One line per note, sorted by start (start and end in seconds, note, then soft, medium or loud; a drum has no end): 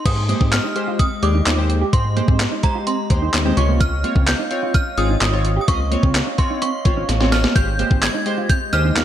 0.05 0.34 G#2 loud
0.05 3.53 G#3 medium
0.05 0.18 G#3 medium
0.05 3.54 G4 medium
0.05 0.18 G4 medium
0.05 0.18 C5 medium
0.05 9.04 D#5 medium
0.05 0.54 D#6 medium
0.05 kick loud
0.05 closed hi-hat medium
0.05 crash loud
0.17 muted clean electric guitar stroke soft
0.29 0.53 G#3 medium
0.29 0.38 A#3 medium
0.29 0.53 G4 medium
0.29 0.53 C5 medium
0.29 closed hi-hat medium
0.41 0.60 G#2 loud
0.41 0.50 C4 medium
0.41 kick medium
0.52 1.01 F6 medium
0.52 snare loud
0.52 clap loud
0.52 closed hi-hat loud
0.64 0.73 D#4 medium
0.76 1.00 G#3 medium
0.76 1.00 G4 medium
0.76 1.00 C5 medium
0.76 muted clean electric guitar stroke soft
0.76 closed hi-hat medium
0.88 0.97 F4 medium
0.99 1.08 C4 medium
0.99 1.24 D#6 medium
0.99 kick medium
0.99 closed hi-hat medium
1.23 1.42 D#2 loud
1.23 1.41 G#3 medium
1.23 1.41 G4 medium
1.23 1.41 D5 medium
1.23 1.95 D6 medium
1.23 muted clean electric guitar stroke soft
1.23 closed hi-hat medium
1.35 1.43 D#4 medium
1.46 1.84 D#2 loud
1.46 1.55 F4 medium
1.46 snare medium
1.46 clap loud
1.46 closed hi-hat loud
1.58 1.76 G#3 medium
1.58 1.76 G4 medium
1.58 1.76 C5 medium
1.70 muted clean electric guitar stroke soft
1.70 closed hi-hat medium
1.81 1.90 G4 medium
1.93 2.21 G#2 loud
1.93 2.05 G#3 medium
1.93 2.05 G4 medium
1.93 2.05 C5 medium
1.93 2.66 C6 medium
1.93 kick loud
1.93 closed hi-hat medium
2.05 muted clean electric guitar stroke soft
2.16 2.40 G#3 medium
2.16 2.26 A#3 medium
2.16 2.41 G4 medium
2.16 2.41 C5 medium
2.16 closed hi-hat medium
2.28 2.47 G#2 loud
2.28 2.37 C4 medium
2.28 kick medium
2.40 snare loud
2.40 clap loud
2.40 closed hi-hat loud
2.52 2.61 D#4 medium
2.63 2.87 G#3 medium
2.63 2.88 G4 medium
2.63 2.88 C5 medium
2.63 2.88 A#5 medium
2.63 muted clean electric guitar stroke soft
2.63 kick medium
2.63 closed hi-hat medium
2.75 2.84 F4 medium
2.87 2.96 C4 medium
2.87 3.59 C6 medium
2.87 closed hi-hat medium
3.10 3.29 D#2 loud
3.10 3.28 G#3 medium
3.10 3.28 G4 medium
3.10 3.28 C5 medium
3.10 muted clean electric guitar stroke soft
3.10 kick loud
3.10 closed hi-hat medium
3.22 3.31 D#4 medium
3.34 3.53 D#2 loud
3.34 snare medium
3.34 clap loud
3.34 closed hi-hat medium
3.45 3.57 G#3 medium
3.45 3.54 C4 medium
3.45 3.57 G4 medium
3.45 3.57 C5 medium
3.57 4.04 C#2 loud
3.57 3.95 C3 medium
3.57 3.95 F4 medium
3.57 7.52 C#5 medium
3.57 3.95 C#5 medium
3.57 7.52 F5 medium
3.57 3.68 C#6 medium
3.57 muted clean electric guitar stroke soft
3.57 closed hi-hat medium
3.69 3.78 A#3 medium
3.81 4.29 F6 loud
3.81 kick loud
3.81 closed hi-hat medium
3.92 muted clean electric guitar stroke soft
4.04 4.13 A#3 medium
4.04 4.28 C4 medium
4.04 4.28 F4 medium
4.04 4.28 C#5 medium
4.04 closed hi-hat medium
4.16 4.34 C#2 loud
4.16 4.25 C4 medium
4.16 kick medium
4.27 4.76 G6 loud
4.27 snare loud
4.27 clap loud
4.27 closed hi-hat loud
4.39 4.48 D#4 medium
4.51 4.75 C4 medium
4.51 4.75 F4 medium
4.51 4.75 C#5 medium
4.51 muted clean electric guitar stroke soft
4.51 closed hi-hat medium
4.63 4.72 F4 medium
4.74 4.83 C#4 medium
4.74 4.96 F6 loud
4.74 kick medium
4.74 closed hi-hat medium
4.98 5.17 G#1 loud
4.98 5.16 C4 medium
4.98 5.16 F4 medium
4.98 5.16 G#4 medium
4.98 5.60 D#6 loud
4.98 muted clean electric guitar stroke soft
4.98 closed hi-hat medium
5.10 5.19 D#4 medium
5.21 5.59 G#1 loud
5.21 5.30 F4 medium
5.21 snare medium
5.21 clap loud
5.21 closed hi-hat medium
5.33 5.51 C4 medium
5.33 5.51 F4 medium
5.33 5.51 C#5 medium
5.45 muted clean electric guitar stroke soft
5.45 closed hi-hat medium
5.56 5.65 G4 medium
5.61 5.68 D#6 medium
5.68 5.96 C#2 loud
5.68 5.80 C4 medium
5.68 5.80 F4 medium
5.68 5.80 D#5 medium
5.68 6.41 C#6 loud
5.68 kick loud
5.68 closed hi-hat medium
5.80 muted clean electric guitar stroke soft
5.91 6.00 A#3 medium
5.91 6.15 C4 medium
5.91 6.16 F4 medium
5.91 6.16 C#5 medium
5.91 closed hi-hat medium
6.03 6.22 C#2 loud
6.03 6.12 C4 medium
6.03 kick medium
6.15 snare medium
6.15 clap loud
6.15 closed hi-hat loud
6.27 6.36 C#4 medium
6.38 6.62 C4 medium
6.38 6.62 F4 medium
6.38 6.63 C#5 medium
6.38 6.63 C6 medium
6.38 muted clean electric guitar stroke soft
6.38 kick medium
6.38 closed hi-hat medium
6.50 6.59 D#4 medium
6.62 6.71 C4 medium
6.62 7.28 C#6 loud
6.62 closed hi-hat medium
6.85 7.04 G#1 loud
6.85 7.03 C4 medium
6.85 7.03 F4 medium
6.85 7.03 C#5 medium
6.85 muted clean electric guitar stroke soft
6.85 kick loud
6.85 closed hi-hat medium
6.97 7.06 C#4 medium
7.09 7.46 A1 loud
7.09 snare medium
7.09 closed hi-hat loud
7.20 7.38 C4 medium
7.20 7.29 C4 medium
7.20 7.39 F4 medium
7.20 7.39 C#5 medium
7.20 snare medium
7.32 7.43 F6 loud
7.32 muted clean electric guitar stroke soft
7.32 snare loud
7.32 open hi-hat medium
7.44 7.53 A#3 medium
7.44 snare loud
7.55 7.84 G#1 loud
7.55 7.68 G#3 medium
7.55 9.04 G#3 medium
7.55 9.04 G4 medium
7.55 7.68 G4 medium
7.55 7.68 C5 medium
7.55 8.04 G6 loud
7.55 kick loud
7.55 closed hi-hat medium
7.67 muted clean electric guitar stroke soft
7.79 8.03 G#3 medium
7.79 7.88 A#3 medium
7.79 8.03 G4 medium
7.79 8.03 C5 medium
7.79 closed hi-hat medium
7.91 8.10 G#1 loud
7.91 8.00 C4 medium
7.91 kick medium
8.02 8.51 G#6 loud
8.02 snare loud
8.02 clap loud
8.02 closed hi-hat loud
8.14 8.23 D#4 medium
8.26 8.50 G#3 medium
8.26 8.50 G4 medium
8.26 8.50 C5 medium
8.26 muted clean electric guitar stroke soft
8.26 closed hi-hat medium
8.38 8.47 F4 medium
8.49 8.58 C4 medium
8.49 8.60 G6 loud
8.49 kick medium
8.49 closed hi-hat medium
8.73 8.92 D#2 loud
8.73 8.91 G#3 medium
8.73 8.91 G4 medium
8.73 8.91 C5 medium
8.73 9.04 F6 loud
8.73 muted clean electric guitar stroke soft
8.73 closed hi-hat medium
8.85 8.93 D#4 medium
8.96 9.04 D#2 loud
8.96 9.04 F4 medium
8.96 snare medium
8.96 clap loud
8.96 closed hi-hat medium